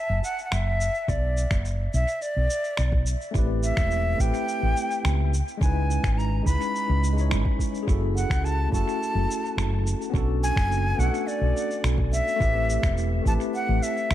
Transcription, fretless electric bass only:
0.09 0.19 F#1 medium
0.52 0.88 F#1 medium
1.08 1.44 B1 medium
1.51 1.86 F#1 medium
1.94 2.03 B1 medium
2.36 2.46 B1 medium
2.78 3.14 B1 medium
3.35 3.70 A1 medium
3.77 4.13 E1 medium
4.20 4.30 A1 medium
4.62 4.72 A1 medium
5.05 5.40 C#2 medium
5.61 5.97 C#2 medium
6.04 6.39 G#1 medium
6.46 6.56 C#2 medium
6.89 7.33 C#2 medium
7.31 7.41 G#1 medium
7.88 8.23 F#1 medium
8.30 8.66 C#2 medium
8.72 8.82 F#1 medium
9.15 9.25 F#1 medium
9.57 9.93 F#1 medium
10.14 10.50 B1 medium
10.56 10.92 F#1 loud
10.98 11.09 B1 loud
11.41 11.51 B1 medium
11.84 12.19 B1 medium
12.40 12.76 A1 medium
12.83 13.19 E1 medium
13.26 13.35 A1 medium
13.69 13.78 A1 medium
14.10 14.14 C#2 medium

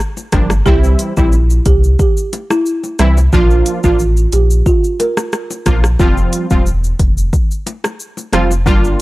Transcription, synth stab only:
0.33 0.53 F3 medium
0.33 0.53 G3 medium
0.33 0.53 A#3 medium
0.33 0.53 D4 medium
0.66 1.13 E3 medium
0.66 1.13 G3 medium
0.66 1.13 C4 medium
0.66 1.13 E4 loud
1.17 1.35 E3 medium
1.17 1.35 G3 medium
1.17 1.35 C4 medium
1.17 1.35 E4 medium
2.99 3.19 E3 medium
2.99 3.19 G3 medium
2.99 3.19 C4 medium
2.99 3.19 E4 medium
3.33 3.80 F3 loud
3.33 3.80 A#3 medium
3.33 3.80 D4 medium
3.33 3.80 F4 loud
3.84 4.02 F3 medium
3.84 4.02 A#3 medium
3.84 4.02 D4 medium
3.84 4.02 F4 medium
5.66 5.86 F3 medium
5.66 5.86 A#3 medium
5.66 5.86 D4 medium
5.66 5.86 F4 medium
5.99 6.46 F3 medium
5.99 6.46 G3 medium
5.99 6.47 C4 medium
5.99 6.47 F4 loud
6.51 6.69 F3 medium
6.51 6.69 G3 medium
6.51 6.69 C4 medium
6.51 6.69 F4 medium
8.33 8.53 F3 medium
8.33 8.53 G3 medium
8.33 8.53 C4 medium
8.33 8.53 F4 medium
8.66 9.02 G3 medium
8.66 9.02 A#3 medium
8.66 9.02 D4 medium
8.66 9.02 F4 loud

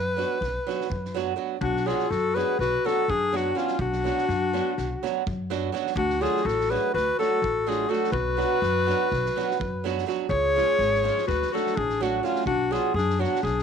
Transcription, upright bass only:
0.00 0.22 F#2 medium
0.41 0.57 B1 medium
0.90 1.32 F#2 medium
1.61 1.91 B1 loud
2.10 2.40 F#2 medium
2.59 2.75 B1 medium
3.08 3.50 F#2 medium
3.79 4.08 B1 medium
4.29 4.58 F#2 medium
4.78 4.93 B1 medium
5.27 5.68 F#2 medium
5.96 6.25 D2 loud
6.45 6.74 A1 loud
6.94 7.10 D2 medium
7.42 7.84 A1 medium
8.12 8.42 B1 loud
8.62 8.91 F#2 medium
9.12 9.27 B1 medium
9.60 10.02 F#2 medium
10.29 10.59 C#2 medium
10.79 11.08 G#1 medium
11.28 11.43 D2 medium
11.77 12.19 A1 medium
12.46 12.75 B1 medium
12.94 13.24 F#2 medium
13.43 13.59 B1 medium

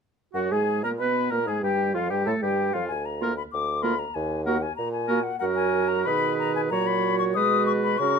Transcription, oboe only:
0.35 0.54 F#4 medium
0.52 0.84 G#4 medium
0.85 0.92 A#4 medium
1.00 1.33 B4 medium
1.31 1.47 A#4 medium
1.47 1.63 G#4 medium
1.64 1.94 G4 medium
1.94 2.10 F4 medium
2.10 2.30 G4 medium
2.28 2.42 A4 medium
2.43 2.75 G4 medium
2.74 2.90 F4 medium
3.23 3.33 A#4 medium
3.83 3.95 A#4 medium
4.47 4.58 A#4 medium
5.08 5.20 A#4 medium
5.41 6.09 A#4 medium
6.08 6.72 B4 medium
6.73 7.38 C#5 medium
7.37 8.01 B4 medium
8.01 8.19 A#4 medium

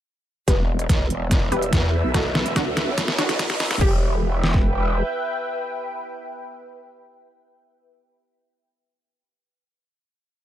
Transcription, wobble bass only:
0.48 0.88 E1 loud
0.89 1.09 B1 loud
1.10 1.50 E1 loud
1.52 1.71 E1 loud
1.73 2.02 E2 loud
2.04 2.44 B1 loud
2.46 2.65 E1 medium
2.66 2.86 D2 loud
2.87 3.69 B1 loud
3.71 3.79 F#1 medium
3.81 5.02 E1 loud

